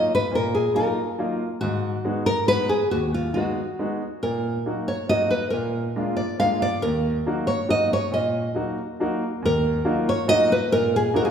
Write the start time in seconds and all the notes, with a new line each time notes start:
Already playing: D#5
0.15 B4
0.31 A#2 A#4
0.55 G#4
0.74 F#3 A#3 D#4 F4 A#4
1.18 F#3 A#3 D#4 F4
1.61 G#2 F#4
2.05 G#3 B3 D#4 F#4
2.26 A#4
2.47 G#3 B3 D#4 F#4 B4
2.69 G#4
2.91 D#2 F#4
3.14 F4
3.34 G#3 B3 D#4 F#4
3.79 G#3 B3 D#4 F#4
4.23 A#2 A#4
4.66 F#3 A#3 D#4 F#4
4.88 C#5
5.09 F#3 A#3 D#4 F#4 D#5
5.31 B4
5.50 A#2 A#4
5.96 G#3 A#3 D4 F4
6.17 D5
6.40 G#3 A#3 D4 F4 F5
6.62 D5
6.82 D#2 A#4
7.26 F#3 A#3 D#4 F#4
7.47 C#5
7.68 F#3 A#3 D#4 F#4 D#5
7.93 C#5
8.12 A#2 D#5
8.55 F#3 A#3 D#4 F#4
9.00 F#3 A#3 D#4 F#4
9.42 D#2 A#4
9.85 F#3 A#3 D#4 F4 F#4
10.09 C#5
10.28 F#3 A#3 D#4 F4 F#4 D#5
10.52 B4
10.72 A#2 A#4
10.96 G#4
11.14 F#3 A#3 D#4 F4 F#4 A#4
11.25 G#4